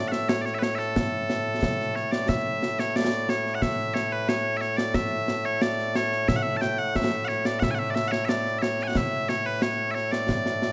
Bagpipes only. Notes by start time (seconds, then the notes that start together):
Already playing: A2 A3
0.08 E5 F#5
0.29 C#5
0.42 C#5 D5
0.55 E5
0.59 B4 C#5
0.75 A4 E5
1.95 C#5
2.12 D5
2.29 E5
2.80 C#5
2.96 D5
3.30 C#5
3.55 F#5
3.62 E5
3.94 C#5
4.12 B4
4.29 C#5
4.57 E5
4.61 C#5
4.77 D5
4.95 E5
5.45 C#5
5.62 D5
5.96 C#5
6.28 E5
6.36 F#5
6.42 E5
6.57 A5
6.61 G5
6.79 F#5
6.96 E5
7.25 C#5 F#5
7.46 D5
7.60 E5 F#5
7.71 G#5
7.75 E5 F#5
7.90 D5
7.95 E5
8.08 C#5 F#5
8.25 D5 E5
8.59 C#5 E5
8.83 G#5
8.88 F#5
8.97 E5
9.29 C#5
9.46 B4
9.62 C#5
9.91 C#5 E5
10.12 D5